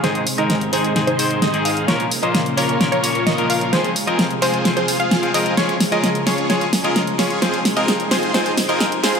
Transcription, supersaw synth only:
X:1
M:4/4
L:1/16
Q:1/4=130
K:Ab
V:1 name="Supersaw synth"
[EAc] z2 [EAe] z2 [EAc]2 z [EAc]3 [EAe]2 [EAf]2 | [FBd] z2 [FBe] z2 [FBd]2 z [FBd]3 [FBe]2 [FBf]2 | [FAc] z2 [FAe] z2 [FAc]2 z [FAc]2 [FAf]3 [FAe]2 | [FAd] z2 [FAe] z2 [FAd]2 [FAd] z2 [FAe] z2 [FAd]2 |
[FAc] z2 [FAe] z2 [FAc]2 [FAc] z2 [FAe] z2 [FAc]2 |]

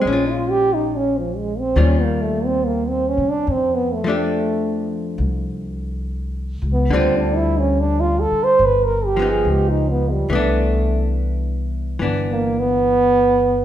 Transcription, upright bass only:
X:1
M:4/4
L:1/8
Q:"Swing" 1/4=70
K:Flyd
V:1 name="Upright bass" clef=bass
_B,,,4 _E,,3 C, | F,,4 C,,3 _D,, | D,,3 z G,,,2 _D,,2 | C,,4 G,,,4 |]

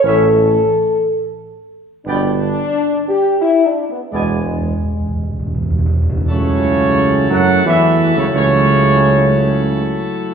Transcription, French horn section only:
X:1
M:3/4
L:1/16
Q:1/4=87
K:Edor
V:1 name="French horn section"
A8 z4 | D6 G2 (3E2 D2 B,2 | ^G,8 z4 | [K:A] C6 F2 E3 C |
C8- C2 z2 |]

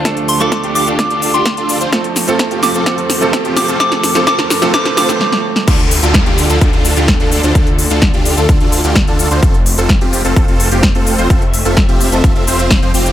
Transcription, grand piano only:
X:1
M:4/4
L:1/16
Q:1/4=128
K:Dm
V:1 name="Grand piano"
[F,A,DA]3 [F,A,DA]12- [F,A,DA] | [F,A,CA]3 [F,A,CA]4- [F,A,CA] [F,A,CA]3 [F,A,CA]4- [F,A,CA] | [F,A,CA]3 [F,A,CA] [F,A,CA]3 [F,A,CA] [F,A,CA]2 [F,A,CA]2 z4 | z16 |
z16 | z16 | z16 |]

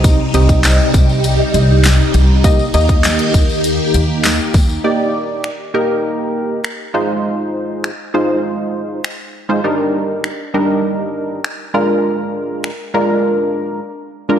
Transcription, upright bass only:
X:1
M:4/4
L:1/8
Q:1/4=100
K:Eb
V:1 name="Upright bass" clef=bass
C,, C,,2 C,,2 C,,2 C,,- | C,, E,,2 E,,2 E,,2 E,, | z8 | z8 |
z8 | z8 |]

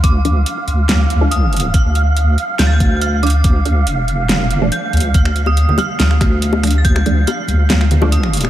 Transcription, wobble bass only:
X:1
M:4/4
L:1/8
Q:1/4=141
K:Dphr
V:1 name="Wobble bass" clef=bass
D,,2 z D,,4- D,, | D,,3 z D,,4 | D,,2 F,,,4 z D,, | D,,3 z D,,4 |
D,,2 z D,,4- D,, |]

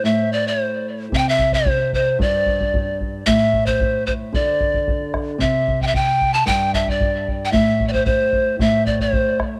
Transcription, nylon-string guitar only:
X:1
M:2/4
L:1/8
Q:1/4=112
K:Am
V:1 name="Nylon-string guitar" clef=bass
A,,4 | C,4 | G,,4 | A,,4 |
D,4 | C,4 | G,,4 | A,,4 |
A,,4 |]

